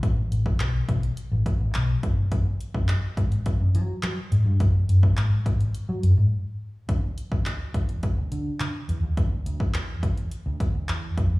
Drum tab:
HH |x-x-x-xxx-x-x-x-|x-x-x-xxx-x-x-x-|x-x-x-xxx-x-----|x-x-x-xxx-x-x-x-|
CP |----x-------x---|----x-------x---|----x-----------|----x-------x---|
BD |o--o--o---o---o-|o--o--o-o-------|o--o--o---------|o--o--o-o-------|

HH |x-x-x-xxx-x-x-x-|
CP |----x-------x---|
BD |o--o--o---o---o-|